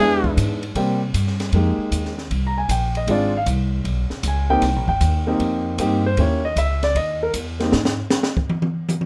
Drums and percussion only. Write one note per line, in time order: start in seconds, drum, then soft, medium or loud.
0.24 kick medium
0.37 kick soft
0.37 hi-hat pedal soft
0.37 ride medium
0.63 ride soft
0.75 kick soft
0.75 ride medium
1.14 kick soft
1.14 hi-hat pedal medium
1.14 ride medium
1.27 snare soft
1.40 snare soft
1.40 ride soft
1.53 kick soft
1.53 ride medium
1.92 kick soft
1.92 hi-hat pedal medium
1.92 ride medium
2.05 snare soft
2.18 snare soft
2.30 kick soft
2.30 ride medium
2.69 kick soft
2.69 hi-hat pedal medium
2.69 ride medium
2.95 ride soft
3.08 kick soft
3.08 ride medium
3.46 kick soft
3.46 hi-hat pedal medium
3.46 ride medium
3.85 kick soft
3.85 ride soft
4.10 snare soft
4.23 kick soft
4.23 hi-hat pedal medium
4.23 ride medium
4.62 kick soft
4.62 snare soft
4.62 ride medium
4.88 kick medium
5.01 kick soft
5.01 hi-hat pedal soft
5.01 ride medium
5.40 kick soft
5.40 ride medium
5.78 kick soft
5.78 hi-hat pedal medium
5.78 ride medium
6.17 kick soft
6.17 ride medium
6.56 kick soft
6.56 hi-hat pedal medium
6.56 ride medium
6.83 snare soft
6.83 ride soft
6.95 kick soft
6.95 ride medium
7.34 kick soft
7.34 hi-hat pedal medium
7.34 ride medium
7.60 snare soft
7.60 ride soft
7.72 snare medium
7.85 snare medium
8.10 snare medium
8.10 hi-hat pedal medium
8.23 snare medium
8.37 kick medium
8.49 high tom medium
8.62 high tom medium
8.89 hi-hat pedal medium
8.89 high tom medium
9.01 high tom medium